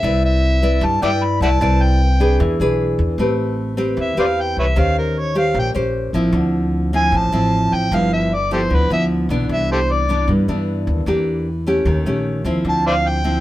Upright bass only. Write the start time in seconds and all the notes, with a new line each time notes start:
0.03 C2
0.81 G2
1.02 G2
1.40 C2
1.61 C2
2.40 E2
2.60 B1
2.99 E2
3.18 A1
3.97 E2
4.17 E2
4.57 C2
4.76 D#2
5.55 A#1
5.75 A#1
6.13 A1
6.32 D2
7.12 A1
7.32 A1
7.72 A1
7.91 G1
8.70 D2
8.90 D2
9.29 B1
9.49 C2
10.28 G2
10.48 G2
10.87 D#2
11.06 E2
11.85 D#2
12.06 A#1
12.44 D#2
12.65 D2